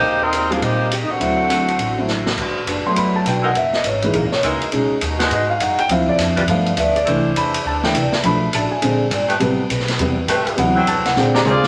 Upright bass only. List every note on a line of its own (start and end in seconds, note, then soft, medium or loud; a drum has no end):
0.02 0.58 D#2 medium
0.61 1.06 A#2 medium
1.09 muted upright bass stroke soft
1.20 1.76 D2 medium
1.78 2.34 A1 medium
2.38 2.66 G1 medium
2.67 2.84 F#1 medium
2.85 muted upright bass stroke soft
2.96 3.24 G1 medium
3.25 3.54 B1 medium
3.54 3.83 F#1 medium
3.84 4.13 G#1 medium
4.14 4.23 A#1 medium
4.23 4.33 F#1 soft
4.34 4.43 E1 medium
4.43 4.60 C#2 medium
4.62 muted upright bass stroke soft
4.73 4.90 B1 medium
4.91 muted upright bass stroke soft
5.02 5.30 D#2 medium
5.30 5.59 G#2 medium
5.60 5.77 F#2 medium
5.78 muted upright bass stroke soft
5.88 6.17 D2 medium
6.18 6.46 F2 medium
6.47 6.76 G2 medium
6.77 7.05 D2 medium
7.06 7.35 C2 medium
7.35 7.64 E2 medium
7.65 7.93 D2 medium
7.94 8.11 C2 medium
8.12 muted upright bass stroke soft
8.23 8.52 B1 medium
8.52 8.69 A1 medium
8.71 muted upright bass stroke soft
8.82 9.10 A#1 medium
9.10 9.39 G1 loud
9.40 9.69 A1 medium
9.69 9.98 B1 medium
9.99 10.27 E2 medium
10.27 10.45 G2 medium
10.46 muted upright bass stroke soft
10.57 10.85 D2 medium
10.87 10.97 F#2 medium
10.97 11.06 D2 medium
11.06 11.15 C2 medium
11.16 11.44 A#2 medium
11.45 11.68 D2 medium